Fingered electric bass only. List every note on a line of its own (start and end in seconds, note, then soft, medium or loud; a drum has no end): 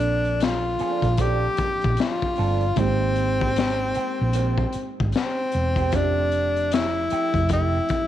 0.00 0.76 A#1 medium
0.81 muted fingered electric bass stroke soft
1.03 1.47 A#1 medium
1.59 muted fingered electric bass stroke soft
1.85 1.96 A#1 medium
2.39 2.70 G1 medium
2.77 3.92 G#1 medium
3.97 muted fingered electric bass stroke soft
4.21 4.64 A#1 medium
4.75 muted fingered electric bass stroke soft
5.01 5.12 G#1 medium
5.54 5.93 E1 medium
5.93 7.07 F1 loud
7.12 muted fingered electric bass stroke soft
7.34 7.78 F1 medium
7.91 muted fingered electric bass stroke soft